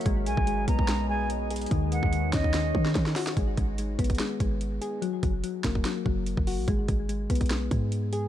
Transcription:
<<
  \new Staff \with { instrumentName = "Flute" } { \time 4/4 \key gis \minor \tempo 4 = 145 r8 gis''4 ais''4 gis''8 r4 | r8 fis''4 dis''4. r4 | r1 | r1 |
r1 | }
  \new Staff \with { instrumentName = "Ambient pad" } { \time 4/4 \key gis \minor <gis gis' b' dis''>1 | <dis dis' cis'' fis''>1 | r1 | r1 |
r1 | }
  \new Staff \with { instrumentName = "Synth keys" } { \clef bass \time 4/4 \key gis \minor gis8 gis8 gis8 b8 gis8 gis4 gis'8 | dis8 dis8 dis8 cis'8 dis8 dis4 fis'8 | gis8 gis8 gis8 b8 gis8 gis4 gis'8 | fis8 fis8 fis8 ais8 fis8 fis4 fis'8 |
gis8 gis8 gis8 b8 gis8 gis4 gis'8 | }
  \new Staff \with { instrumentName = "808-style bass" } { \clef bass \time 4/4 \key gis \minor gis,,8 b,,16 gis,,8. b,,2~ b,,8 | dis,8. dis,8 e,16 dis,4 dis8 dis8 r8 | gis,,8 gis,,4 gis,,8 r8 gis,,4 r8 | r8 fis,,8 r8 fis,,8 r8 fis,,8. fis,,8 ais,,16 |
gis,,8 gis,,4 b,,4 gis,4. | }
  \new DrumStaff \with { instrumentName = "Drums" } \drummode { \time 4/4 <hh bd>8 hh16 bd16 hh8 <hh bd>16 bd16 <hh sn>4 hh8 hh32 hh32 hh32 hh32 | <hh bd>8 hh16 bd16 hh8 <hh bd sn>16 bd16 <hh sn>8 bd16 sn16 <hh bd sn>16 sn16 <hh hho sn>16 <hh sn>16 | <hh bd>8 <hh bd>8 hh8 <hh bd>32 hh32 <hh bd>32 hh32 <hh sn>8 <hh bd>8 hh8 hh8 | hh8 <hh bd>8 hh8 <hh bd sn>16 bd16 <hh sn>8 bd8 hh16 bd16 hho8 |
<hh bd>8 <hh bd>8 hh8 <hh bd>32 hh32 <hh bd>32 hh32 <hh sn>8 <hh bd>8 hh8 hh8 | }
>>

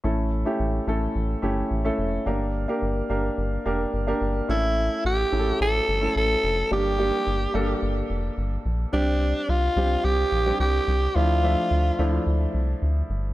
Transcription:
<<
  \new Staff \with { instrumentName = "Alto saxophone" } { \time 4/4 \key a \phrygian \tempo 4 = 108 r1 | r1 | e'4 g'4 a'4 a'4 | g'2 r2 |
d'4 f'4 g'4 g'4 | f'2 r2 | }
  \new Staff \with { instrumentName = "Grand piano" } { \time 4/4 \key a \phrygian <a cis' e' a'>8. <a cis' e' g'>8. <a cis' e' a'>8. r16 <a cis' e' g'>8. <a cis' e' a'>8. | <bes d' g' bes'>8. <bes d' g' bes'>8. <bes d' g' bes'>8. r16 <bes d' g' bes'>8. <bes d' g' bes'>8. | <a cis' e' a'>4~ <a cis' e' a'>16 r16 <a cis' e' gis' a'>4 r16 <a cis' e' a'>4 r16 | <g bes d' g'>8 <g bes d' g'>8. r16 <g bes d' a'>4.~ <g bes d' a'>16 r8. |
<g c' d' g'>4~ <g c' d' g'>16 r16 <g c' d' g'>4 r16 <g c' d' g'>4 r16 | <f a d' e'>8 <f a d' e''>8. r16 <f a d' e'>4.~ <f a d' e'>16 r8. | }
  \new Staff \with { instrumentName = "Analog synth bass" } { \clef bass \time 4/4 \key a \phrygian a,,4 a,,8 a,,8 a,,8 g,,8 a,,8 f,,8 | g,,4 g,,8 g,,8 g,,8 f,,8 g,,8 g,,8 | a,,4 a,,8 a,,8 a,,8 g,,8 a,,8 f,,8 | g,,4 g,,8 g,,8 g,,8 f,,8 g,,8 bes,,8 |
c,4 c,8 c,8 c,8 bes,,8 c,8 c,8 | d,4 d,8 d,8 d,8 c,8 d,8 g,,8 | }
>>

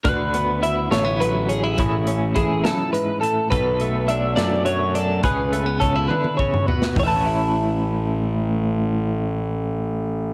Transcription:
<<
  \new Staff \with { instrumentName = "Clean electric guitar" } { \time 6/8 \key a \major \tempo 4. = 70 b'4 e''8 cis''8 b'8 gis'8 | r4 gis'8 a'8 b'8 a'8 | b'4 e''8 d''8 cis''8 a'8 | b'4 a'8 b'8 cis''8 b'8 |
<cis'' e'' a''>2.~ | <cis'' e'' a''>2. | }
  \new Staff \with { instrumentName = "Clean electric guitar" } { \time 6/8 \key a \major << { fis'8 b8 e'8 a16 b8. cis'16 e'16 | <e cis' e' gis'>8 cis'8 e'2 | a'8 a8 d'8 a4 d'8 | gis'8 a16 b16 cis'16 e'4.~ e'16 |
<e cis' e'>2.~ | <e cis' e'>2. | } \\ { d2 fis4 | a,4. fis,8 gis,8 a,8 | b,2 fis4 | cis4. d8 cis8 b,8 |
a,2.~ | a,2. | } >> }
  \new Staff \with { instrumentName = "Picked electric bass" } { \clef bass \time 6/8 \key a \major d,4. a,,4. | a,,4 a,,8 r4. | b,,4. fis,4. | cis,4 cis,8 r4. |
a,,2.~ | a,,2. | }
  \new DrumStaff \with { instrumentName = "Drums" } \drummode { \time 6/8 <hh bd>8 hh8 hh8 <hh sn>8 hh8 hh8 | <hh bd>8 hh8 <hh bd>8 <hh sn>8 hh8 hh8 | <hh bd>8 hh8 hh8 <hh sn>8 hh8 hh8 | <hh bd>8 hh8 <hh bd>8 tommh16 tommh16 bd16 toml16 tomfh16 sn16 |
<hho bd tomfh>4. r4. | r4. r4. | }
>>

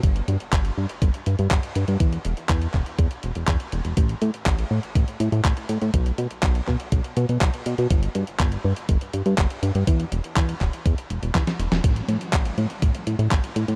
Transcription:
<<
  \new Staff \with { instrumentName = "Analog synth bass" } { \clef bass \time 4/4 \key a \mixolydian \tempo 4 = 122 g,,16 r16 g,16 r16 g,,16 r16 g,16 r16 g,,16 r16 g,16 g,16 g,,16 r16 g,16 g,16 | e,16 r16 e,,16 r16 e,16 r16 e,,16 r16 e,16 r16 e,,16 e,,16 e,16 r16 e,,16 e,,16 | a,,16 r16 a,16 r16 a,,16 r16 a,16 r16 a,,16 r16 a,16 a,16 a,,16 r16 a,16 a,16 | b,,16 r16 b,16 r16 b,,16 r16 b,16 r16 b,,16 r16 b,16 b,16 b,,16 r16 b,16 b,16 |
g,,16 r16 g,16 r16 g,,16 r16 g,16 r16 g,,16 r16 g,16 g,16 g,,16 r16 g,16 g,16 | e,16 r16 e,,16 r16 e,16 r16 e,,16 r16 e,16 r16 e,,16 e,,16 e,16 r16 e,,16 e,,16 | a,,16 r16 a,16 r16 a,,16 r16 a,16 r16 a,,16 r16 a,16 a,16 a,,16 r16 a,16 a,16 | }
  \new DrumStaff \with { instrumentName = "Drums" } \drummode { \time 4/4 <hh bd>16 hh16 hh16 hh16 <hc hh bd>16 hh8 hh16 <hh bd>16 hh16 hh16 hh16 <hc hh bd>16 hh16 hh16 hh16 | <hh bd>16 hh16 hh16 hh16 <hc hh bd>16 hh16 <hc bd>16 hh16 <hh bd>16 hh16 hh16 hh16 <hc hh bd>16 hh16 hh16 hh16 | <hh bd>16 hh16 hh16 hh16 <hc hh bd>16 hh8 hh16 <hh bd>16 hh16 hh16 hh16 <hc hh bd>16 hh16 hh16 hh16 | <hh bd>16 hh16 hh16 hh16 <hc hh bd>16 hh16 <hc bd>16 hh16 <hh bd>16 hh16 hh16 hh16 <hc hh bd>16 hh16 hh16 hh16 |
<hh bd>16 hh16 hh16 hh16 <hc hh bd>16 hh8 hh16 <hh bd>16 hh16 hh16 hh16 <hc hh bd>16 hh16 hh16 hh16 | <hh bd>16 hh16 hh16 hh16 <hc hh bd>16 hh16 <hc hh bd>16 hh16 <hh bd>16 hh16 hh16 hh16 <hc hh bd sn>16 <hh sn>16 hh16 <hh sn>16 | <hh bd>16 hh16 hh16 hh16 <hc hh bd>16 hh16 hh16 hh16 <hh bd>16 hh16 hh16 hh16 <hc hh bd>16 hh16 hh16 hh16 | }
>>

